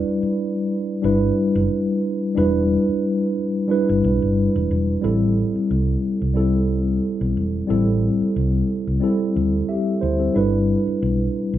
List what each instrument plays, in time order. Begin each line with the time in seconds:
Already playing: tine electric piano G3 D4 E4 B4 D5
0.23 muted fingered electric bass stroke
1.02 fingered electric bass G1, tine electric piano G3 D4 E4 B4
1.55 fingered electric bass F#1
2.35 fingered electric bass E1, tine electric piano G3 D4 E4 B4
2.89 muted fingered electric bass stroke
3.68 tine electric piano G3 D4 E4 B4
3.89 fingered electric bass G1
4.04 fingered electric bass B1
4.22 fingered electric bass G1
4.56 fingered electric bass E1
4.71 fingered electric bass E1
5.01 fingered electric bass A1, tine electric piano G3 C4 E4 A4
5.55 muted fingered electric bass stroke
5.71 fingered electric bass C2
6.22 fingered electric bass C2
6.34 tine electric piano G3 C4 E4 A4
7.21 fingered electric bass B1
7.37 fingered electric bass E1
7.67 fingered electric bass A1, tine electric piano G3 C4 E4 A4
8.21 muted fingered electric bass stroke
8.36 fingered electric bass C2
8.87 fingered electric bass C2
9.00 tine electric piano G3 C4 E4 A4
9.36 fingered electric bass D2
9.69 tine electric piano G4 E5
10.01 fingered electric bass D2, tine electric piano E4 C5
10.19 tine electric piano C4 A4
10.34 fingered electric bass G1, tine electric piano G3 D4 E4 B4
10.87 muted fingered electric bass stroke
11.02 fingered electric bass B1
11.53 fingered electric bass B1